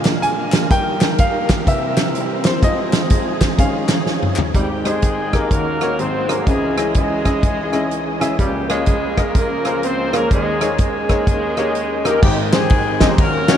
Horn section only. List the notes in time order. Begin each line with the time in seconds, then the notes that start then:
4.55 G3 C4 D#4 G4
4.86 G#3 C4 D#4 G#4
5.52 A#3 C#4 F#4 A#4
6.00 C4 D#4 F#4 C5
6.30 A#3 A#4
6.48 G#3 D#4 E4 G#4
6.96 G#3 D#4 E4 G#4
8.40 G3 A#3 G4
8.70 G#3 F4 G#4
9.18 A#3 F4 A#4
9.84 C4 C5
10.15 A#3 A#4
10.32 G#3 C#4 G#4
10.79 G#3 C#4 G#4
12.05 A#3 A#4
12.23 G3 C4 D#4 G4
12.53 G#3 C4 D#4 G#4
13.19 A#3 C#4 F#4 A#4